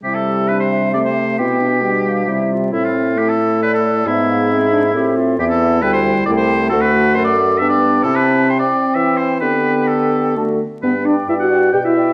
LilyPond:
<<
  \new Staff \with { instrumentName = "Flute" } { \time 3/4 \key c \major \tempo 4 = 134 e''2. | g''4 g''8 f''8 e''4 | e''2 d''4 | e''8 f''8 e''4 e''4 |
\key g \major e''4 g''4 g''4 | fis''4. r8 g''4 | a''4 g''2 | g''2 a''8 r8 |
r8 g''4 g''8 g''8 g''8 | }
  \new Staff \with { instrumentName = "Oboe" } { \time 3/4 \key c \major g'16 a'8. b'16 c''8. d''16 c''8. | g'2~ g'8 r8 | e'16 f'8. g'16 a'8. b'16 a'8. | e'2~ e'8 r8 |
\key g \major g'16 a'8. b'16 c''8. d''16 c''8. | a'16 b'8. c''16 d''8. e''16 d''8. | a'16 b'8. c''16 d''8. e''8 c''8 | b'4 a'4 r4 |
b'8 d''8 e''16 fis''8. g''16 e''8. | }
  \new Staff \with { instrumentName = "Clarinet" } { \time 3/4 \key c \major e'4 d'4 c'4 | e'8 d'8 d'4 e'8 f'8 | e'4 e'2 | gis'4 gis'4 g'8 f'8 |
\key g \major e'2 e'4 | fis'4 a'4 d'4 | e'4. r8 e'4 | g'2 fis'8 r8 |
r8 d''4 d''8 d''8 d''8 | }
  \new Staff \with { instrumentName = "French horn" } { \time 3/4 \key c \major g2 a4 | b4 g4 g4 | c'4 a2 | b4 c'8 d'8 c'4 |
\key g \major b4 g4 a4 | a4. r8 b4 | c'2. | b2 a8 r8 |
b8 d'8 e'16 fis'8. g'16 e'8. | }
  \new Staff \with { instrumentName = "Bassoon" } { \clef bass \time 3/4 \key c \major c2. | b,2 c4 | a,2. | gis,2 a,4 |
\key g \major e,4 d,4 c,4 | d,4 fis,4 g,4 | c4. r8 e4 | d2 d8 r8 |
g,4 g,4 b,4 | }
>>